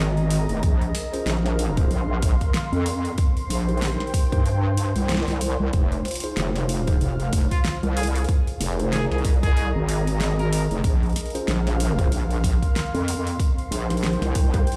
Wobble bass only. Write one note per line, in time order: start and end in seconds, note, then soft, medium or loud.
0.00 0.47 G#1 loud
0.49 0.61 F1 loud
0.63 0.93 A#1 loud
1.26 1.88 A#1 loud
1.90 2.38 A#1 loud
2.72 3.16 F2 medium
3.49 3.97 A#1 loud
4.32 4.93 G2 loud
4.96 5.25 C2 loud
5.28 5.57 C2 loud
5.60 5.71 C2 loud
5.73 6.03 F1 loud
6.37 6.99 F1 loud
7.01 7.48 F1 loud
7.83 8.26 C2 medium
8.60 9.08 F1 loud
9.11 9.72 C2 loud
9.75 10.68 G#1 loud
10.71 10.82 F1 loud
10.84 11.14 A#1 loud
11.48 12.10 A#1 loud
12.12 12.59 A#1 loud
12.94 13.37 F2 medium
13.71 14.19 A#1 loud
14.22 14.65 C2 loud